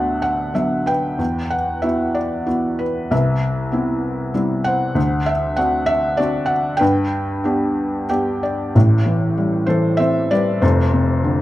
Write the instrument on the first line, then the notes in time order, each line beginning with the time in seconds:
felt piano
Already playing: D2 B3 D4 F#4 E5 F#5 A5
0.22 F#5
0.54 F#3 B3 D4 E5
0.86 B4 G5
1.19 E2
1.50 F#5
1.82 B3 E4 F#4 E5
2.15 D5
2.46 B3 E4 F#4
2.79 B4
3.11 C2 B4 E5
3.72 B3 C4 E4
4.34 G3 C4 E4
4.64 C5 F#5
4.95 D2
5.26 E5
5.57 C4 D4 F#4 F#5
5.86 E5
6.17 C4 D4 F#4 D5
6.46 F#5
6.77 G2 B4 G5
7.44 B3 D4 G4
8.09 B3 D4 G4 G5
8.43 D5
8.75 A1 A2
9.06 E3
9.38 G3
9.66 E3 A4 C5
9.97 C4 C5 E5
10.31 G3 B4 D5
10.62 F1 F2 A4 C5
10.93 C3
11.24 D3